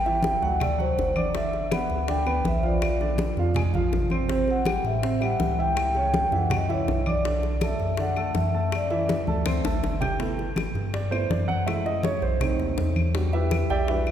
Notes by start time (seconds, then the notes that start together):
Already playing: A1 G5
0.05 E3 E4 E5, high bongo, high conga
0.23 G5, high bongo, high conga
0.42 D2 F#3 F#4 F#5, high bongo, high conga
0.60 A3 A4 D5 A5, high bongo, high conga, low conga, claves
0.78 F#3 F#4 C5 F#5, high bongo, high conga
0.98 G1, high bongo, low bongo, high conga
1.16 D4 D5 D6, high conga, claves
1.34 D3 D4 D5 E5, high bongo, high conga
1.53 high bongo, high conga
1.71 B3 B4 F#5 B5, high bongo, high conga, claves
1.90 D2, high bongo, high conga
2.08 D3 D4 D5 G5, high bongo, high conga
2.26 B3 B4 B5, high bongo, high conga, claves
2.45 A#1 E5, high bongo, low bongo, high conga
2.58 C5
2.63 F3 F4 D5 F5, high conga
2.82 high bongo, high conga, claves
3.00 D3 D4 D5, high bongo, high conga
3.18 high bongo, high conga
3.37 F2 F3 F4 F5, high bongo, high conga
3.55 G#3 G#4 G#5, high bongo, high conga, low conga, claves
3.74 A#1 F3 F4 F5, high bongo, high conga, low conga
3.92 A1, high bongo, low bongo, high conga
4.10 C4 C5 C6, high conga, claves
4.28 C3 C4 C5, high bongo, high conga
4.47 F#5, high bongo, high conga
4.65 G3 G4 G5, high bongo, high conga, claves
4.84 A2 E5, high bongo, high conga
5.02 C3 C4 C5, high bongo, high conga
5.21 G3 G4 E5 F#5, high bongo, high conga, claves
5.40 C#2, high bongo, low bongo, high conga
5.58 E3 E4 E5 G5
5.77 high bongo, high conga, claves
5.95 C#3 C#4 C#5, high bongo, high conga
6.14 G5, high bongo, high conga
6.32 F#2 E3 E4 E5, high bongo, high conga
6.36 F#5
6.50 F#3 F#4 F#5, high bongo, high conga, low conga, claves
6.56 D#5
6.68 E3 E4 E5, high bongo, high conga
6.73 C#5
6.88 B1, high bongo, low bongo, high conga
7.06 D4 D5 D6, high conga, claves
7.25 D3 D4 D5, high bongo
7.43 high bongo, high conga
7.61 A3 A4 E5 A5, high bongo, high conga, claves
7.80 F#2, high bongo, high conga
7.97 D3 D4 D5 F#5, high bongo, high conga
8.16 A3 A4 A5, high bongo, high conga, claves
8.35 F#2 E5, high bongo, low bongo, high conga
8.55 A3 A4 A5
8.72 D5, high bongo, high conga, claves
8.90 E3 E4 E5, high bongo, high conga
9.09 E5, high bongo, high conga
9.27 D2 A3 A4 A5, high conga
9.46 C4 C5 C6, low bongo, high conga, claves
9.64 A1 A3 A4 A5, low bongo
9.83 G1, low bongo
10.01 G4 G5 G6, low bongo, low conga, claves
10.19 A3 B3 E4, high bongo, high conga
10.38 high bongo, high conga
10.56 high bongo, high conga, claves
10.75 G2, high bongo, high conga
10.93 D5, high bongo, high conga
11.10 A3 B3 E4 C5, high bongo, high conga, claves
11.30 F#2 D5, high bongo, low bongo, high conga
11.48 F#5, high conga
11.66 G#3 A3 E4 E5, high bongo, high conga, claves
11.86 D#5, high bongo, high conga
12.03 C#5, high bongo, high conga
12.22 B1 C5, high bongo, high conga
12.40 A3 C4 D#4, high bongo, high conga, low conga, claves
12.59 D#2, high bongo, high conga
12.77 E2, high bongo, low bongo, high conga
12.96 high conga, claves
13.14 G3 D4 F#4, high bongo
13.33 E4 G4 B4 E5, high bongo, high conga
13.51 high bongo, high conga, claves
13.70 B1 G4 D5 E5 G5, high bongo, high conga
13.88 G3 D4 E4 F#4 G4 B4 E5, high bongo, high conga
14.07 high bongo, high conga, claves